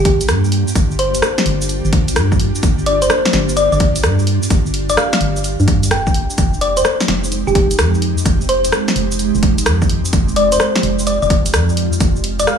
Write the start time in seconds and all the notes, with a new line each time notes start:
Already playing: G1 A#3 D4 F4 G4
0.05 G4, kick, open hi-hat
0.21 closed hi-hat, cabasa
0.28 G2, cross-stick, closed hi-hat, cabasa
0.44 cabasa
0.52 open hi-hat
0.68 cabasa
0.75 G1, kick, closed hi-hat, cabasa
0.91 cabasa
0.99 C5, open hi-hat
1.14 F1, closed hi-hat, cabasa
1.22 cross-stick, cabasa
1.38 snare, cabasa
1.46 G1, open hi-hat
1.61 cabasa
1.69 closed hi-hat, cabasa
1.85 G1, cabasa
1.93 kick, open hi-hat
2.08 closed hi-hat, cabasa
2.16 G2, cross-stick, closed hi-hat, cabasa
2.32 kick, cabasa
2.40 open hi-hat
2.55 cabasa
2.63 G1, kick, closed hi-hat, cabasa
2.79 cabasa
2.86 D5, open hi-hat
3.02 F1 C5, closed hi-hat, cabasa
3.10 C5, cross-stick, cabasa
3.25 snare, cabasa
3.33 G1, snare, open hi-hat
3.49 cabasa
3.57 D5, closed hi-hat, cabasa
3.72 G1 D5, cabasa
3.80 kick, open hi-hat
3.96 closed hi-hat, cabasa
4.03 G2, cross-stick, closed hi-hat, cabasa
4.19 cabasa
4.27 open hi-hat
4.43 cabasa
4.50 G1, kick, closed hi-hat, cabasa
4.66 cabasa
4.74 open hi-hat
4.89 F1 D5, closed hi-hat, cabasa
4.97 F5, cross-stick, cabasa
5.13 F5, snare, open hi-hat, cabasa
5.21 G1, open hi-hat
5.36 cabasa
5.44 closed hi-hat, cabasa
5.60 G2, cabasa
5.68 kick, open hi-hat
5.83 closed hi-hat, cabasa
5.91 F1 G5, cross-stick, closed hi-hat, cabasa
6.07 kick, cabasa
6.14 G#3 C4 D#4 G4, open hi-hat
6.30 cabasa
6.38 F1, kick, closed hi-hat, cabasa
6.54 cabasa
6.61 D5, open hi-hat
6.77 D#1 C5, closed hi-hat, cabasa
6.85 C5, cross-stick, cabasa
7.00 snare, cabasa
7.08 F1, snare, open hi-hat
7.24 cabasa
7.32 closed hi-hat, cabasa
7.47 F1 G4, cabasa
7.55 G4, kick, open hi-hat
7.71 closed hi-hat, cabasa
7.79 F2, cross-stick, closed hi-hat, cabasa
7.94 cabasa
8.02 open hi-hat
8.18 cabasa
8.25 F1, kick, closed hi-hat, cabasa
8.41 cabasa
8.49 C5, open hi-hat
8.64 D#1, closed hi-hat, cabasa
8.72 cross-stick, cabasa
8.88 snare, cabasa
8.96 F1, open hi-hat
9.12 cabasa
9.19 closed hi-hat, cabasa
9.35 F1, cabasa
9.43 kick, open hi-hat
9.58 closed hi-hat, cabasa
9.66 F2, cross-stick, closed hi-hat, cabasa
9.82 kick, cabasa
9.89 F4, open hi-hat
10.05 cabasa
10.13 F1, kick, closed hi-hat, cabasa
10.29 cabasa
10.36 D5, open hi-hat
10.52 D#1 C5, closed hi-hat, cabasa
10.60 C5, cross-stick, cabasa
10.76 snare, cabasa
10.83 F1, open hi-hat
10.99 cabasa
11.07 D5, closed hi-hat, cabasa
11.22 F1 D5, cabasa
11.30 kick, open hi-hat
11.46 closed hi-hat, cabasa
11.53 F2, cross-stick, closed hi-hat, cabasa
11.69 cabasa
11.77 open hi-hat
11.93 cabasa
12.00 F1, kick, closed hi-hat, cabasa
12.16 cabasa
12.24 open hi-hat
12.39 D#1 D5, closed hi-hat, cabasa
12.47 F5, cross-stick, cabasa